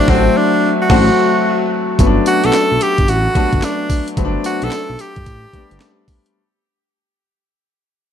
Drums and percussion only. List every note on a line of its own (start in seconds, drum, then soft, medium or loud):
0.08 kick loud
0.08 snare loud
0.90 kick loud
0.90 snare loud
0.90 crash medium
1.99 kick loud
1.99 closed hi-hat medium
1.99 tambourine medium
2.26 closed hi-hat medium
2.26 tambourine medium
2.44 closed hi-hat medium
2.53 snare loud
2.53 clap medium
2.53 closed hi-hat medium
2.53 tambourine medium
2.81 closed hi-hat medium
2.81 tambourine medium
2.98 kick medium
2.98 closed hi-hat medium
3.08 closed hi-hat medium
3.08 tambourine medium
3.35 kick loud
3.35 closed hi-hat medium
3.53 kick loud
3.53 closed hi-hat medium
3.62 snare loud
3.62 clap medium
3.62 closed hi-hat medium
3.62 tambourine medium
3.90 kick medium
3.90 open hi-hat medium
3.90 tambourine medium
4.08 closed hi-hat medium
4.17 kick loud
4.17 closed hi-hat medium
4.17 tambourine medium
4.44 closed hi-hat medium
4.44 tambourine medium
4.62 closed hi-hat medium
4.71 snare loud
4.71 clap medium
4.71 closed hi-hat medium
4.71 tambourine medium
4.99 closed hi-hat medium
4.99 tambourine medium
5.16 kick medium
5.16 closed hi-hat medium
5.26 kick loud
5.26 closed hi-hat medium
5.26 tambourine medium
5.53 kick loud
5.53 closed hi-hat medium
5.71 closed hi-hat medium
5.80 snare loud
5.80 clap medium
5.80 closed hi-hat medium
5.80 tambourine medium
6.08 kick loud
6.08 open hi-hat medium
6.08 tambourine medium
6.26 closed hi-hat medium